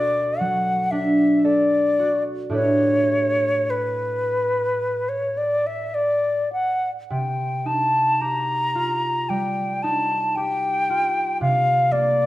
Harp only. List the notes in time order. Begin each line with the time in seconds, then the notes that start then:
Already playing: B2 D4 F#4 A4
0.40 F#3
0.92 D4
1.45 A4
1.99 F#4
2.50 A2 D4 G4 A4
2.54 B4
7.10 C3
7.66 D#4
8.21 G4
8.75 F4
9.30 G3
9.84 D#4
10.37 G4
10.90 F4
11.41 C3
11.92 A#3